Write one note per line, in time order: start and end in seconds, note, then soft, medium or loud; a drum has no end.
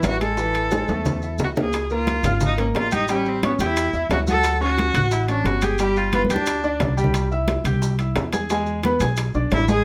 0.00 0.82 A1 medium
0.00 0.14 E3 medium
0.00 0.14 E4 medium
0.00 high bongo medium
0.00 low bongo medium
0.00 high conga medium
0.00 maracas medium
0.04 0.21 F#4 loud
0.04 high timbale medium
0.04 low timbale medium
0.21 0.35 G#3 medium
0.21 0.35 G#4 medium
0.21 1.36 A4 loud
0.21 high conga soft
0.21 high timbale medium
0.21 maracas soft
0.37 0.65 E3 medium
0.37 0.66 E4 medium
0.37 high bongo medium
0.37 high conga soft
0.37 maracas medium
0.54 high conga soft
0.54 high timbale medium
0.54 maracas soft
0.71 0.86 G#3 medium
0.71 0.86 G#4 medium
0.71 high bongo medium
0.71 high conga medium
0.71 high timbale medium
0.71 maracas medium
0.88 1.36 E2 medium
0.88 1.16 A3 medium
0.88 1.17 A4 medium
0.88 high bongo soft
0.88 high conga medium
0.88 high timbale medium
0.88 maracas soft
1.05 high bongo medium
1.05 low conga medium
1.05 high timbale medium
1.05 maracas medium
1.22 1.50 E4 medium
1.22 1.51 E5 medium
1.22 high bongo soft
1.22 maracas soft
1.39 2.18 C#2 medium
1.39 high bongo medium
1.39 low bongo medium
1.39 low conga medium
1.39 low timbale medium
1.39 maracas medium
1.43 1.50 F#4 medium
1.56 1.71 A#3 medium
1.56 1.71 A#4 medium
1.56 low conga loud
1.56 low timbale medium
1.56 maracas soft
1.61 1.90 G#4 medium
1.73 high bongo medium
1.73 high conga soft
1.73 high timbale medium
1.73 maracas medium
1.90 2.18 A#3 medium
1.90 2.40 F4 medium
1.90 2.19 A#4 medium
1.90 2.19 A#5 medium
1.90 high conga soft
1.90 maracas soft
2.07 high bongo medium
2.07 high conga loud
2.07 high timbale medium
2.07 maracas soft
2.23 2.71 G#1 loud
2.23 2.52 F4 medium
2.23 2.53 F5 medium
2.23 2.53 F6 medium
2.23 high conga soft
2.23 low conga medium
2.23 high timbale loud
2.23 maracas medium
2.40 high bongo medium
2.40 high conga soft
2.40 low conga medium
2.40 maracas loud
2.45 2.59 D#4 loud
2.57 2.85 A#3 medium
2.57 2.67 C#4 medium
2.57 2.86 A#4 medium
2.57 2.86 A#5 medium
2.57 high conga soft
2.57 high timbale medium
2.57 maracas soft
2.74 3.54 A1 medium
2.74 2.92 F4 loud
2.74 high bongo medium
2.74 low bongo medium
2.74 high conga soft
2.74 high timbale medium
2.74 low timbale medium
2.74 maracas soft
2.91 3.09 D#4 loud
2.91 3.06 G4 medium
2.91 3.06 G5 medium
2.91 3.06 G6 medium
2.91 high conga medium
2.91 high timbale medium
2.91 maracas medium
3.08 3.37 G3 medium
3.08 3.30 C#4 medium
3.08 3.37 G4 medium
3.08 3.37 G5 medium
3.08 high bongo medium
3.08 high conga soft
3.08 high timbale medium
3.08 maracas medium
3.25 3.44 C4 medium
3.25 high bongo soft
3.25 high conga soft
3.25 maracas soft
3.43 3.52 B3 loud
3.43 3.57 C#4 medium
3.43 3.57 C#5 medium
3.43 3.57 C#6 medium
3.43 high bongo medium
3.43 high conga loud
3.43 high timbale loud
3.43 maracas soft
3.59 3.91 E2 medium
3.59 4.08 E4 loud
3.59 3.88 G4 medium
3.59 3.88 G5 medium
3.59 3.88 G6 medium
3.59 high conga loud
3.59 high timbale medium
3.59 maracas medium
3.77 high bongo medium
3.77 high conga soft
3.77 high timbale loud
3.77 maracas loud
3.93 4.09 E2 medium
3.93 4.21 E4 medium
3.93 4.21 E5 medium
3.93 4.22 E6 medium
3.93 high bongo soft
3.93 high conga soft
3.93 maracas soft
4.09 4.89 D2 medium
4.09 4.19 F#4 loud
4.09 high bongo medium
4.09 low bongo medium
4.09 high conga medium
4.09 high timbale medium
4.09 low timbale medium
4.09 maracas soft
4.27 4.55 F#3 medium
4.27 4.55 F#4 loud
4.27 4.60 A4 loud
4.27 4.55 F#5 medium
4.27 high bongo soft
4.27 high conga loud
4.27 maracas medium
4.43 high bongo medium
4.43 high conga soft
4.43 high timbale medium
4.43 maracas medium
4.61 4.89 C#4 medium
4.61 5.14 F#4 loud
4.61 4.89 C#5 medium
4.61 4.89 C#6 medium
4.61 high conga soft
4.61 maracas soft
4.78 high bongo medium
4.78 high conga medium
4.78 high timbale medium
4.78 maracas soft
4.94 5.42 A1 medium
4.94 5.22 F#4 medium
4.94 5.23 F#5 medium
4.94 5.23 F#6 medium
4.94 high conga soft
4.94 low conga medium
4.94 high timbale loud
4.94 maracas medium
5.11 5.29 E4 loud
5.11 high bongo medium
5.11 high conga soft
5.11 maracas medium
5.28 5.56 C#4 medium
5.28 5.48 D4 loud
5.28 5.57 C#5 medium
5.28 5.57 C#6 medium
5.28 high conga soft
5.28 high timbale medium
5.28 maracas soft
5.44 6.24 G1 medium
5.44 5.65 F#4 loud
5.44 high bongo medium
5.44 low bongo medium
5.44 high conga soft
5.44 high timbale medium
5.44 maracas soft
5.62 5.76 G4 medium
5.62 5.80 G#4 loud
5.62 5.77 G5 medium
5.62 5.77 G6 medium
5.62 high conga medium
5.62 high timbale medium
5.62 maracas medium
5.78 6.07 G3 medium
5.78 6.07 G4 medium
5.78 5.99 G4 loud
5.78 6.08 G5 medium
5.78 high bongo medium
5.78 high conga soft
5.78 high timbale medium
5.78 maracas medium
5.96 6.14 F4 loud
5.96 high bongo soft
5.96 high conga soft
5.96 maracas soft
6.12 6.27 B3 medium
6.12 6.22 F4 loud
6.12 6.27 B4 medium
6.12 6.27 B5 medium
6.12 high bongo medium
6.12 high conga loud
6.12 high timbale medium
6.12 maracas soft
6.25 high conga medium
6.29 6.77 D2 medium
6.29 6.94 D4 loud
6.29 6.58 G4 medium
6.29 6.58 G5 medium
6.29 6.58 G6 medium
6.29 high timbale medium
6.29 maracas medium
6.36 high conga medium
6.46 high bongo medium
6.46 high timbale medium
6.46 maracas medium
6.64 6.91 D4 medium
6.64 6.92 D5 medium
6.64 6.92 D6 medium
6.64 high bongo soft
6.64 maracas soft
6.80 7.59 C2 medium
6.80 high bongo medium
6.80 low bongo medium
6.80 low conga medium
6.80 high timbale medium
6.80 low timbale medium
6.80 maracas soft
6.97 7.25 G3 medium
6.97 7.25 G4 medium
6.97 7.25 G5 medium
6.97 high bongo soft
6.97 maracas medium
7.04 low conga medium
7.14 high bongo medium
7.14 high conga soft
7.14 high timbale medium
7.14 maracas medium
7.31 7.59 E4 medium
7.31 7.59 E5 medium
7.31 7.60 E6 medium
7.31 high conga soft
7.31 maracas soft
7.48 high bongo medium
7.48 high conga loud
7.48 high timbale medium
7.48 maracas soft
7.64 8.12 C2 medium
7.64 7.93 G4 medium
7.64 7.93 G5 medium
7.64 7.93 G6 medium
7.64 high conga soft
7.64 low conga medium
7.64 high timbale loud
7.64 maracas medium
7.82 high bongo medium
7.82 high conga soft
7.82 maracas medium
7.99 8.27 E4 medium
7.99 8.27 E5 medium
7.99 8.27 E6 medium
7.99 high conga soft
7.99 high timbale medium
7.99 maracas soft
8.16 8.95 E2 medium
8.16 high bongo medium
8.16 low bongo medium
8.16 high conga soft
8.16 high timbale medium
8.16 low timbale medium
8.16 maracas soft
8.33 8.47 G#4 medium
8.33 8.47 G#5 medium
8.33 8.47 G#6 medium
8.33 high conga medium
8.33 high timbale medium
8.33 maracas medium
8.50 8.78 G#3 medium
8.50 8.78 G#4 medium
8.50 8.78 G#5 loud
8.50 high bongo medium
8.50 high conga soft
8.50 high timbale medium
8.50 maracas medium
8.66 high bongo soft
8.66 high conga soft
8.66 maracas soft
8.83 8.98 B3 medium
8.83 8.98 B4 medium
8.83 8.98 B5 medium
8.83 high bongo medium
8.83 high conga loud
8.83 high timbale medium
8.83 maracas soft
9.00 9.32 B1 loud
9.00 9.28 G#4 medium
9.00 9.29 G#5 medium
9.00 9.29 G#6 medium
9.00 high conga medium
9.00 high timbale medium
9.00 maracas medium
9.17 high bongo medium
9.17 high conga soft
9.17 high timbale medium
9.17 maracas medium
9.34 9.50 B1 medium
9.34 9.62 D4 medium
9.34 9.62 D5 medium
9.34 9.62 D6 medium
9.34 high bongo soft
9.34 high conga soft
9.34 maracas soft
9.51 9.84 A1 loud
9.51 9.68 E4 loud
9.51 high bongo medium
9.51 low bongo medium
9.51 high conga medium
9.51 high timbale medium
9.51 low timbale medium
9.51 maracas soft
9.68 9.84 G#3 medium
9.68 9.84 G#4 medium
9.68 9.84 G#4 loud
9.68 9.84 G#5 medium
9.68 high bongo soft
9.68 high conga medium
9.68 maracas medium